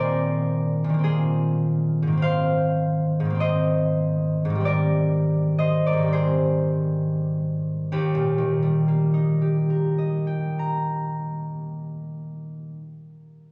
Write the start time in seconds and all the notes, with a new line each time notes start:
Already playing: A#2 D#3 A#3 C4 F4 G#4 A#4 D5
0.84 A#2
0.89 D#3
0.94 A#3
0.99 C4
1.04 F4 G#4
2.02 G#2
2.07 D#3
2.12 A#3
2.17 C4
2.22 C5 F5
3.20 G#2
3.25 D#3
3.30 A#3
3.35 C4
3.40 C5 D#5
4.45 G#2
4.50 D#3
4.55 G3
4.60 C4
4.65 A#4 D5
5.59 C5 D#5
5.86 A#4 D5
5.93 G#2
5.98 D#3
6.02 G3
6.08 C4
6.13 G#4 C5
7.92 D#2 G4
8.15 A#2
8.38 D#3
8.62 G3
8.88 A#3
9.14 D#4
9.41 G4
9.70 A#4
9.98 D#5
10.27 G5
10.59 A#5